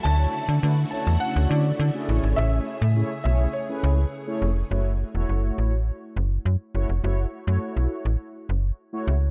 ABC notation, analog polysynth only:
X:1
M:4/4
L:1/16
Q:1/4=103
K:F#m
V:1 name="Analog polysynth"
[A,DEFc]2 z2 [A,DEFB] z [A,DEFc] z2 [A,DEFc]2 z2 [A,DEFG] [A,CEGc]2- | [A,CEGc]3 z [A,CEGc] z [A,CEGc] z2 [A,CEGB]2 z2 [A,CEGc] z2 | [A,EFc] z2 [A,EFc]4 z6 z [A,EFc] z | [A,EFc] z2 [A,EFc]4 z6 [A,EFc] z2 |]